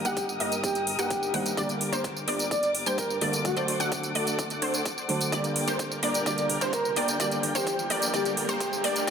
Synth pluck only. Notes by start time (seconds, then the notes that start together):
0.05 F#5
0.40 D#5
0.99 F#5
1.34 F#5
1.57 D5
1.93 C5
2.28 D5
2.86 G5
3.22 D5
3.57 D5
3.80 F#5
4.15 D5
4.62 C5
5.32 D5
5.68 C5
6.03 D5
6.26 D5
6.61 C5
6.97 D5
7.20 D5
7.55 C5
7.90 D5
8.14 D5
8.49 C5
8.84 D5